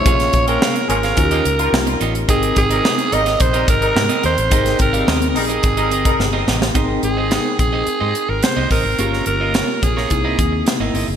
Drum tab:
HH |xxxx-xxxxxxx-xxx|xxxx-xxxxxxx-xxx|xxxx-xoxxxxx----|x-x-x-x-x-x-x-o-|
SD |-o--o--o----o---|----o--o----o---|-o--o-------o-oo|----o-------o---|
BD |o-o-----o-------|o-o-----o-o-----|o-o-----o--o----|o-----o-------o-|

HH |x-x-x-x-x-x-x-o-|
SD |-o--o--o----o---|
BD |------o-o-o-----|